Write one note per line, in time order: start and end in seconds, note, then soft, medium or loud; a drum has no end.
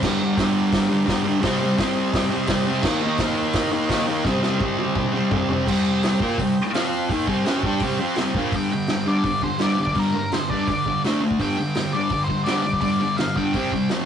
0.01 0.35 G2 medium
0.01 0.22 D3 loud
0.01 1.40 G4 medium
0.01 1.41 A#4 medium
0.01 1.40 D5 medium
0.01 kick loud
0.01 snare loud
0.01 crash loud
0.06 0.19 G3 loud
0.19 0.37 D3 medium
0.19 0.39 G3 medium
0.37 1.05 G2 medium
0.37 0.92 D3 medium
0.37 0.89 G3 loud
0.37 kick loud
0.37 snare loud
0.37 open hi-hat medium
0.72 kick loud
0.72 snare loud
0.72 open hi-hat medium
0.89 1.07 D3 medium
0.89 1.09 G3 medium
1.06 1.42 G2 medium
1.06 1.28 D3 loud
1.06 1.24 G3 loud
1.06 kick loud
1.06 snare loud
1.06 open hi-hat medium
1.25 1.43 G3 medium
1.29 1.40 D3 medium
1.41 1.76 C3 medium
1.41 1.64 G3 loud
1.41 1.59 C4 loud
1.41 2.81 G4 medium
1.41 2.82 C5 medium
1.41 2.82 D#5 loud
1.41 kick loud
1.41 snare loud
1.41 open hi-hat medium
1.61 1.79 G3 medium
1.61 1.80 C4 medium
1.77 2.46 C3 medium
1.77 2.34 G3 medium
1.77 kick loud
1.77 snare loud
1.77 open hi-hat medium
1.81 2.29 C4 medium
2.14 kick loud
2.14 snare loud
2.14 open hi-hat medium
2.30 2.49 G3 medium
2.30 2.49 C4 medium
2.47 2.82 C3 loud
2.47 2.69 G3 loud
2.47 2.66 C4 loud
2.47 kick loud
2.47 snare loud
2.47 open hi-hat medium
2.67 2.84 G3 medium
2.67 2.84 C4 medium
2.83 3.19 D#3 medium
2.83 3.05 A#3 loud
2.83 3.01 D#4 loud
2.83 4.23 G4 medium
2.83 4.23 A#4 medium
2.83 4.22 D#5 medium
2.83 kick loud
2.83 snare loud
2.83 crash loud
3.02 3.23 D#4 medium
3.06 3.21 A#3 medium
3.18 3.88 D#3 medium
3.18 kick loud
3.18 snare loud
3.18 open hi-hat medium
3.22 3.75 A#3 medium
3.22 3.71 D#4 medium
3.53 kick loud
3.53 snare loud
3.53 open hi-hat medium
3.72 3.92 D#4 medium
3.76 3.90 A#3 medium
3.89 4.24 D#3 medium
3.89 4.09 A#3 loud
3.89 4.06 D#4 loud
3.89 kick loud
3.89 snare loud
3.89 open hi-hat medium
4.07 4.26 A#3 medium
4.07 4.24 D#4 medium
4.25 4.59 C3 medium
4.25 4.44 G3 loud
4.25 4.41 C4 loud
4.25 5.64 G4 medium
4.25 5.64 C5 medium
4.25 5.45 D#5 loud
4.25 kick loud
4.25 snare medium
4.42 4.61 G3 medium
4.42 4.62 C4 medium
4.42 snare medium
4.60 5.30 C3 medium
4.60 5.15 G3 medium
4.60 5.12 C4 medium
4.60 kick loud
4.79 high tom medium
4.95 kick loud
4.95 mid tom loud
5.13 5.32 G3 medium
5.13 5.33 C4 medium
5.13 5.30 G5 medium
5.29 5.66 C3 medium
5.29 5.51 G3 loud
5.29 5.47 F5 medium
5.29 kick loud
5.29 floor tom loud
5.34 5.48 C4 loud
5.46 5.66 C4 medium
5.46 5.64 D#5 medium
5.50 5.67 G3 medium
5.50 floor tom medium
5.65 6.20 C3 medium
5.65 6.21 G3 loud
5.65 6.71 G4 medium
5.65 6.70 C5 medium
5.65 6.71 G5 medium
5.65 kick loud
5.65 crash loud
5.69 6.21 C4 loud
6.03 snare loud
6.03 open hi-hat medium
6.20 6.38 A#3 medium
6.20 6.39 F4 medium
6.20 6.39 A#4 medium
6.20 kick loud
6.38 6.53 C3 medium
6.38 6.53 G3 medium
6.38 kick loud
6.38 open hi-hat medium
6.70 7.08 F4 medium
6.70 7.06 C5 medium
6.70 7.09 F5 medium
6.74 7.10 F3 loud
6.74 7.10 C4 medium
6.74 7.10 F4 loud
6.74 snare loud
6.74 open hi-hat medium
7.07 7.27 D#3 medium
7.07 8.49 G4 medium
7.07 8.49 C5 medium
7.07 8.11 G5 medium
7.07 kick loud
7.07 open hi-hat medium
7.12 7.28 A#3 loud
7.12 7.29 D#4 loud
7.27 7.45 C3 medium
7.27 7.46 G3 loud
7.27 7.46 C4 medium
7.27 kick loud
7.46 7.63 F#3 medium
7.46 7.63 C#4 loud
7.46 7.63 F#4 loud
7.46 snare loud
7.46 open hi-hat medium
7.63 7.81 G3 medium
7.63 7.82 D4 medium
7.63 7.82 G4 loud
7.63 kick loud
7.80 7.99 C3 medium
7.80 8.00 G3 medium
7.80 7.99 C4 loud
7.80 kick loud
7.80 open hi-hat medium
8.00 8.17 F3 medium
8.00 8.17 C4 loud
8.00 8.17 F4 medium
8.00 8.16 C6 medium
8.12 8.48 G5 medium
8.12 open hi-hat medium
8.17 8.35 C3 medium
8.17 8.35 G3 loud
8.17 8.35 C4 loud
8.17 snare loud
8.34 8.53 A#2 loud
8.34 8.53 F3 medium
8.34 8.53 A#3 loud
8.34 kick loud
8.52 8.70 G2 medium
8.52 8.70 D3 medium
8.52 8.71 G3 loud
8.52 kick loud
8.52 open hi-hat medium
8.56 9.10 G5 loud
8.72 8.87 G2 medium
8.72 8.88 D3 medium
8.87 9.05 G2 medium
8.87 9.05 D3 medium
8.87 snare loud
8.87 open hi-hat medium
9.06 9.23 G2 medium
9.06 9.23 D3 medium
9.06 9.24 G3 medium
9.06 9.43 D5 medium
9.24 9.41 G2 medium
9.24 9.41 D3 medium
9.24 kick loud
9.24 open hi-hat medium
9.42 9.58 G2 medium
9.42 9.58 D3 medium
9.42 9.61 C5 medium
9.42 kick medium
9.59 9.76 G2 medium
9.59 9.77 D3 loud
9.59 9.77 G3 medium
9.59 9.80 D5 medium
9.59 snare loud
9.59 open hi-hat medium
9.78 9.94 G2 medium
9.78 9.94 D3 medium
9.78 9.98 D5 medium
9.87 kick medium
9.95 10.12 G2 medium
9.95 10.13 D3 loud
9.95 10.13 G3 loud
9.95 kick medium
9.95 open hi-hat soft
9.99 10.31 A#4 medium
10.14 10.30 G2 medium
10.14 10.31 D3 medium
10.32 10.48 G2 medium
10.32 10.49 D3 medium
10.32 10.50 C5 medium
10.32 snare loud
10.32 open hi-hat soft
10.50 10.67 G2 medium
10.50 10.67 D3 medium
10.50 10.68 G3 medium
10.50 10.67 D5 medium
10.50 kick medium
10.67 10.84 G2 medium
10.67 10.84 D3 medium
10.67 11.01 D5 medium
10.67 kick loud
10.67 open hi-hat soft
10.86 11.02 G2 medium
10.86 11.02 D3 medium
10.86 kick medium
11.04 11.21 D3 medium
11.04 11.21 A3 medium
11.04 11.22 D4 loud
11.04 snare loud
11.04 open hi-hat soft
11.22 11.38 D3 medium
11.22 11.38 A3 medium
11.31 kick medium
11.39 11.56 G2 medium
11.39 11.56 D3 medium
11.39 11.57 G3 medium
11.39 11.96 G5 loud
11.39 kick medium
11.39 open hi-hat medium
11.59 11.74 G2 medium
11.59 11.75 D3 medium
11.75 11.92 G2 medium
11.75 11.93 D3 medium
11.75 snare loud
11.75 open hi-hat soft
11.93 12.10 G2 medium
11.93 12.11 D3 medium
11.93 12.11 G3 loud
11.93 12.24 D5 loud
12.09 12.28 G2 medium
12.09 12.28 D3 medium
12.09 kick loud
12.09 open hi-hat medium
12.24 12.43 C5 medium
12.24 kick medium
12.29 12.45 G2 medium
12.29 12.45 D3 medium
12.44 12.63 G2 medium
12.44 12.64 D3 medium
12.44 12.64 G3 loud
12.44 12.61 D5 medium
12.44 snare loud
12.44 open hi-hat soft
12.62 12.80 G2 medium
12.62 12.81 D3 medium
12.62 12.80 D5 medium
12.73 kick medium
12.81 12.99 G2 medium
12.81 12.99 D3 medium
12.81 13.00 G3 loud
12.81 13.19 D5 medium
12.81 kick medium
12.81 open hi-hat soft
13.00 13.17 G2 medium
13.00 13.17 D3 medium
13.17 13.35 G2 medium
13.17 13.35 D3 medium
13.17 13.36 F5 medium
13.17 snare loud
13.17 open hi-hat soft
13.36 13.54 G2 medium
13.36 13.54 D3 medium
13.36 13.54 G3 medium
13.36 13.54 G5 medium
13.36 kick medium
13.54 13.72 C3 medium
13.54 13.72 G3 medium
13.54 13.72 C4 medium
13.54 13.88 G5 medium
13.54 kick loud
13.54 open hi-hat soft
13.72 13.89 C3 medium
13.72 13.89 G3 medium
13.72 kick medium
13.89 14.05 F2 medium
13.89 14.05 C3 medium
13.89 14.05 F3 medium
13.89 snare loud
13.89 open hi-hat soft